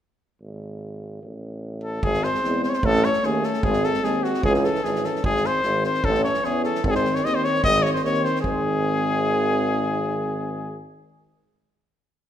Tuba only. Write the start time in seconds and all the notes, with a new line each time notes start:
0.41 G#1
1.23 A1
2.03 G#1
2.43 E2
2.84 A1
3.24 D#2
3.64 G#1
4.04 D#2
4.44 C#2
4.84 G#1
5.24 G#1
5.64 G#1
6.05 A1
6.44 E2
6.84 G#1
7.24 D#2
7.64 G#1
8.04 D#2
8.45 G#1